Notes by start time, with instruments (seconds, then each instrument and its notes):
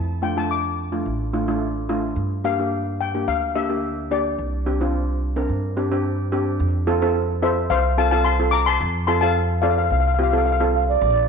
Already playing: upright bass F2, steel pan A5
0.22 steel pan A3 D4 F4 G5
0.37 steel pan A3 D4 F4 A5
0.51 steel pan D6
0.92 steel pan A3 D4 F4
1.06 upright bass A1
1.33 steel pan A3 D4 F4
1.48 steel pan A3 D4 F4
1.89 steel pan A3 D4 F4
2.16 upright bass G2
2.44 steel pan A#3 D4 G4 F5
2.59 steel pan A#3 D4 G4
3.01 steel pan G5
3.14 steel pan A#3 D4 G4
3.27 upright bass D2, steel pan F5
3.55 steel pan A#3 D4 G4 E5
3.69 steel pan A#3 D4 G4
4.11 steel pan A#3 D4 G4 D5
4.38 upright bass C2
4.66 steel pan C4 D4 G4
4.81 steel pan C4 D4 F4
5.36 steel pan C4 D4 A#4
5.49 upright bass G2
5.77 steel pan C4 D4 G4
5.92 steel pan C4 D4 G4
6.32 steel pan C4 D4 G4
6.60 upright bass F2
6.87 steel pan C4 F4 A4
7.02 steel pan C4 F4 A4
7.42 steel pan C4 F4 A4 C5 E5
7.70 upright bass C2, steel pan C5 F5
7.97 steel pan C4 F4 A4 F5 A5
8.11 steel pan C4 F4 A4 F5 A5
8.24 steel pan A5 C6
8.40 steel pan C4 F4 A4
8.51 steel pan A#5 D6
8.66 steel pan A5 C6
8.80 upright bass F2
9.07 steel pan C4 F4 A4 A5 C6
9.21 steel pan C4 F4 A4 F5 A5
9.62 steel pan C4 F4 A4 D5 F5
9.71 steel pan F5
9.78 steel pan F5
9.84 steel pan F5
9.90 upright bass C2, steel pan F5
10.00 steel pan F5
10.08 steel pan F5
10.14 steel pan F5
10.19 steel pan C4 F4 G4
10.23 steel pan F5
10.30 steel pan C4 F4 A4 F5
10.38 steel pan F5
10.46 steel pan F5
10.52 steel pan F5
10.60 steel pan C4 F4 A4
10.74 flute F5
10.88 flute D5
11.01 upright bass A#1